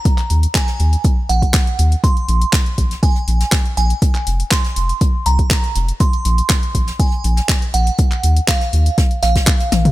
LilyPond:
<<
  \new Staff \with { instrumentName = "Synth bell" } { \time 4/4 \key ees \dorian \tempo 4 = 121 bes''4 aes''4. ges''4. | c'''2 aes''4. aes''8~ | aes''4 c'''4. bes''4. | c'''2 aes''4. ges''8~ |
ges''4 f''4. f''4. | }
  \new Staff \with { instrumentName = "Analog synth bass" } { \clef bass \time 4/4 \key ees \dorian r8 ees,8 r8 ees,8 r8 bes,,8 r8 ees,8 | r8 bes,,8 r8 bes,,8 r8 bes,,8 r8 bes,,8 | r8 f,,8 r8 f,,8 r8 c,8 r8 f,,8 | r8 bes,,8 r8 bes,,8 r8 bes,,8 r8 bes,,8 |
r8 ees,8 r8 ees,8 r8 bes,,8 r8 bes,,8 | }
  \new DrumStaff \with { instrumentName = "Drums" } \drummode { \time 4/4 <hh bd>16 <hc hh>16 hh16 hh16 <hc hh bd sn>16 <hh sn>16 hh16 hh16 <hh bd>8 hh16 <hh bd>16 <hc hh bd sn>16 hh16 hh16 hh16 | <hh bd>16 hh16 hh16 hh16 <hc hh bd sn>16 hh16 <hh bd>16 <hh sn>16 <hh hho bd>16 hh16 hh16 <hh sn>16 <hc hh bd sn>16 hh16 hh16 hh16 | <hh bd>16 <hc hh>16 hh16 hh16 <hc hh bd sn>16 <hh sn>16 hh16 hh16 <hh bd>8 hh16 <hh bd>16 <hc hh bd sn>16 hh16 hh16 hh16 | <hh bd>16 hh16 hh16 hh16 <hc hh bd sn>16 hh16 <hh bd>16 <hh sn>16 <hh hho bd>16 hh16 hh16 <hh sn>16 <hc hh bd sn>16 hh16 hh16 hh16 |
<hh bd>16 <hc hh>16 hh16 hh16 <hc hh bd sn>16 <hh sn>16 hh16 hh16 <hh bd sn>16 hh16 <hh sn>16 <hh bd sn>16 <hc hh bd>16 hh16 <hh sn tommh>16 <hh toml>16 | }
>>